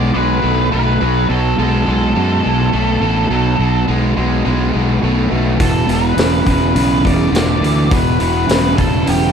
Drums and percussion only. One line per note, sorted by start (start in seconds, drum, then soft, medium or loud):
5.60 kick loud
5.60 open hi-hat medium
5.89 open hi-hat soft
6.18 snare loud
6.18 open hi-hat medium
6.46 kick medium
6.46 open hi-hat medium
6.76 open hi-hat medium
7.05 kick medium
7.05 open hi-hat medium
7.35 snare loud
7.35 open hi-hat medium
7.64 open hi-hat soft
7.91 kick loud
7.91 open hi-hat medium
8.20 open hi-hat medium
8.49 snare loud
8.49 open hi-hat medium
8.78 kick medium
8.78 open hi-hat medium
9.07 open hi-hat medium